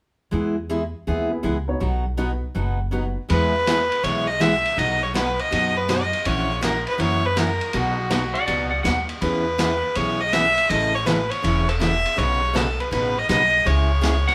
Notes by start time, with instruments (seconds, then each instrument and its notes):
0.31 upright bass E2, steel-string acoustic guitar E3 G#3 B3 E4 G#4
0.69 steel-string acoustic guitar E3 G#3 B3 E4 G#4
1.07 upright bass D#2, steel-string acoustic guitar E3 G#3 B3 E4 G#4
1.30 upright piano B3 E4 G#4 B4
1.43 upright bass C#2, steel-string acoustic guitar E3 G#3 B3 E4 G#4
1.68 upright piano B3 D#4 F#4 C#5
1.80 upright bass B1, steel-string acoustic guitar B2 F#3 B3 D#4 F#4
2.17 steel-string acoustic guitar B2 F#3 B3 D#4 F#4, upright piano B3 D#4 F#4 B4
2.55 upright bass F#1, steel-string acoustic guitar B2 F#3 B3 D#4 F#4
2.91 steel-string acoustic guitar B2 F#3 B3 D#4 F#4, upright piano B3 D#4 F#4 B4
3.29 upright bass E2, steel-string acoustic guitar E3 G#3 B3 E4 G#4, fiddle B4, ride
3.66 steel-string acoustic guitar E3 G#3 B3 E4 G#4, snare, hi-hat pedal, ride
3.92 ride
4.03 upright bass B1, steel-string acoustic guitar E3 G#3 B3 E4 G#4, fiddle C#5, ride
4.27 fiddle D#5
4.40 steel-string acoustic guitar E3 G#3 B3 E4 G#4, fiddle E5, snare, hi-hat pedal, ride
4.65 ride
4.77 upright bass B1, steel-string acoustic guitar B2 F#3 B3 D#4 F#4, fiddle D#5, ride
5.03 fiddle C#5
5.14 steel-string acoustic guitar B2 F#3 B3 D#4 F#4, fiddle B4, snare, hi-hat pedal, ride
5.39 fiddle D#5, ride
5.51 upright bass F#2, steel-string acoustic guitar B2 F#3 B3 D#4 F#4, ride
5.77 fiddle B4
5.88 steel-string acoustic guitar B2 F#3 B3 D#4 F#4, fiddle D#5, snare, hi-hat pedal, ride
6.13 ride
6.25 upright bass A#1, steel-string acoustic guitar E3 A#3 C#4 F#4 A#4, fiddle C#5, ride
6.61 steel-string acoustic guitar E3 A#3 C#4 F#4 A#4, fiddle A#4, snare, hi-hat pedal, ride
6.87 fiddle B4, ride
6.98 upright bass F#2, steel-string acoustic guitar E3 A#3 C#4 F#4 A#4, fiddle C#5, ride
7.25 fiddle B4
7.36 steel-string acoustic guitar E3 A#3 C#4 F#4 A#4, fiddle A#4, snare, hi-hat pedal, ride
7.61 ride
7.73 upright bass B1, steel-string acoustic guitar B2 F#3 B3 D#4 F#4, fiddle F#4, ride
8.10 steel-string acoustic guitar B2 F#3 B3 D#4 F#4, snare, hi-hat pedal, ride
8.34 electric slide guitar D5 F#5, ride
8.46 upright bass C#2, steel-string acoustic guitar B2 F#3 B3 D#4 F#4, electric slide guitar D5 F#5, ride
8.69 electric slide guitar D5 F#5
8.83 upright bass D#2, steel-string acoustic guitar B2 F#3 B3 D#4 F#4, electric slide guitar F#5, snare, hi-hat pedal, ride
9.09 ride
9.21 upright bass E2, steel-string acoustic guitar E3 B3 C#4 G#4, fiddle B4, ride
9.58 steel-string acoustic guitar E3 B3 C#4 G#4, snare, hi-hat pedal, ride
9.95 upright bass B1, steel-string acoustic guitar E3 B3 C#4 G#4, fiddle C#5, ride
10.21 fiddle D#5
10.32 steel-string acoustic guitar E3 B3 C#4 G#4, fiddle E5, snare, hi-hat pedal, ride
10.58 ride
10.69 upright bass A1, steel-string acoustic guitar C#3 E3 A3 C#4 A4, fiddle D#5, ride
10.94 fiddle C#5
11.06 steel-string acoustic guitar C#3 E3 A3 C#4 A4, fiddle B4, snare, hi-hat pedal, ride
11.30 fiddle C#5, ride
11.42 upright bass E1, steel-string acoustic guitar C#3 E3 A3 C#4 A4, ride
11.69 fiddle A4, ride
11.79 steel-string acoustic guitar C#3 E3 A3 C#4 A4, fiddle E5, snare, hi-hat pedal, ride
12.06 ride
12.16 upright bass B1, steel-string acoustic guitar B2 C#3 F#3 B3 D#4 B4, fiddle C#5, ride
12.53 steel-string acoustic guitar B2 C#3 F#3 B3 D#4 B4, fiddle A4, snare, hi-hat pedal, ride
12.80 fiddle B4, ride
12.91 upright bass A1, steel-string acoustic guitar B2 C#3 F#3 B3 D#4 B4, fiddle B4, ride
13.18 fiddle D#5
13.29 upright bass B1, steel-string acoustic guitar B2 C#3 F#3 B3 D#4 B4, fiddle D#5, snare, hi-hat pedal, ride
13.65 upright bass C#2, steel-string acoustic guitar C#3 G#3 C#4 E4 G#4, fiddle C#5, ride
14.01 steel-string acoustic guitar C#3 G#3 C#4 E4 G#4, snare, hi-hat pedal, ride
14.28 electric slide guitar F#5, snare, ride